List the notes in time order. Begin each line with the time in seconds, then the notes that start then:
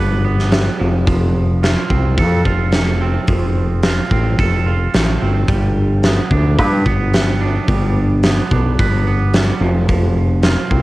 Already playing: G1 G3 B3 D4 B4
0.25 B3
0.39 snare
0.52 G3, snare, open hi-hat
0.80 F1 F3
1.07 F3, kick, open hi-hat
1.63 F4, snare, open hi-hat
1.90 C2 C4, kick
2.18 F2 A4, kick, open hi-hat
2.45 F1 F4, kick
2.72 A3, snare, open hi-hat
3.01 C4
3.27 F1 F3, kick, open hi-hat
3.83 F4, snare, open hi-hat
4.11 A1 C4, kick
4.39 F1 A4, kick, open hi-hat
4.67 F4
4.94 A1 A3, snare, open hi-hat
5.22 G1 C4
5.48 G1 G3, kick, open hi-hat
6.03 B3, snare, open hi-hat
6.31 D2 D4, kick
6.58 G2 B4, kick, open hi-hat
6.86 G1 B3, kick
7.14 G3, snare, open hi-hat
7.41 D4
7.68 G1 G3, kick, open hi-hat
8.23 B3, snare, open hi-hat
8.51 B1 D4, kick
8.79 G1 B4, kick, open hi-hat
9.07 B3
9.34 G3, snare, open hi-hat
9.61 F1 F3
9.89 F3, kick, open hi-hat
10.43 F4, snare, open hi-hat
10.70 C2 C4, kick